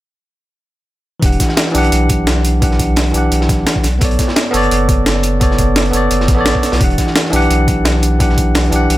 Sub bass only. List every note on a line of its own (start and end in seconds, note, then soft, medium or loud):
1.23 1.38 E1 loud
1.75 1.91 B1 medium
1.92 3.13 B1 loud
3.14 3.30 B1 medium
3.32 3.65 B1 medium
3.84 4.00 B1 loud
4.02 4.17 B1 loud
4.54 4.70 F#1 medium
4.71 5.92 F#1 loud
5.94 6.09 F#1 medium
6.11 6.30 F#1 medium
6.28 6.54 A1 loud
6.72 6.80 B1 medium
6.81 6.97 E1 loud
7.33 7.49 B1 medium
7.50 8.71 B1 loud
8.73 8.88 B1 medium
8.90 8.98 B1 medium